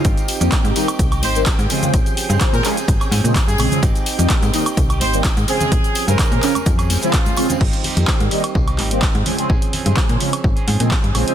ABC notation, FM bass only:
X:1
M:4/4
L:1/16
Q:"Swing 16ths" 1/4=127
K:Ab
V:1 name="FM bass" clef=bass
A,,, z2 F,, z A,, z2 C,,2 A,,,3 A,, z2 | B,,, z2 G,, z B,, z2 A,,, z A,, B,, z G,, B,,, z | A,,, z2 F,, z A,, z2 C,,2 A,,,3 A,, z2 | B,,, z2 G,, z B,, z2 F,,3 z4 z |
A,,, z2 F,, z A,, z2 C,,2 A,,,3 A,, z2 | B,,, z2 G,, z B,, z2 A,,, z A,, B,, z G,, B,,, z |]